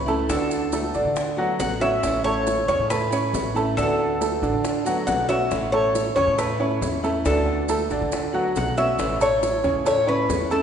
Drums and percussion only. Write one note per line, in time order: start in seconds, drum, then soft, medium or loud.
0.08 maracas soft
0.29 high bongo medium
0.29 maracas medium
0.51 high bongo soft
0.51 maracas medium
0.72 high bongo medium
0.72 maracas medium
0.94 high bongo soft
0.94 maracas soft
1.16 high bongo medium
1.16 maracas medium
1.38 high bongo soft
1.60 high bongo soft
1.60 low bongo medium
1.60 maracas medium
1.82 maracas soft
2.03 high bongo medium
2.03 maracas medium
2.25 high bongo soft
2.47 high bongo medium
2.47 maracas medium
2.69 high bongo soft
2.69 maracas soft
2.90 high bongo medium
2.90 maracas medium
3.12 high bongo soft
3.12 maracas medium
3.34 high bongo soft
3.34 low bongo medium
3.34 maracas medium
3.56 maracas soft
3.78 high bongo medium
3.78 maracas medium
4.00 high bongo soft
4.21 high bongo medium
4.21 maracas medium
4.43 high bongo soft
4.43 maracas soft
4.65 high bongo medium
4.65 maracas medium
4.86 high bongo soft
4.86 maracas medium
5.07 high bongo soft
5.07 low bongo medium
5.07 maracas medium
5.29 maracas soft
5.51 high bongo medium
5.51 maracas medium
5.74 high bongo soft
5.95 high bongo medium
5.95 maracas medium
6.17 high bongo soft
6.17 maracas soft
6.38 high bongo medium
6.38 maracas medium
6.60 high bongo soft
6.82 high bongo soft
6.82 low bongo medium
6.82 maracas medium
7.04 maracas soft
7.25 high bongo medium
7.25 maracas medium
7.48 high bongo soft
7.68 high bongo medium
7.68 maracas medium
7.90 high bongo soft
7.90 maracas soft
8.12 high bongo medium
8.12 maracas medium
8.35 high bongo soft
8.56 high bongo soft
8.56 low bongo medium
8.56 maracas medium
8.77 maracas soft
8.99 high bongo medium
8.99 maracas medium
9.21 high bongo soft
9.21 maracas medium
9.43 high bongo medium
9.43 maracas medium
9.64 high bongo soft
9.64 maracas soft
9.86 high bongo medium
9.86 maracas medium
10.08 high bongo soft
10.30 high bongo soft
10.30 low bongo medium
10.30 maracas medium
10.51 maracas soft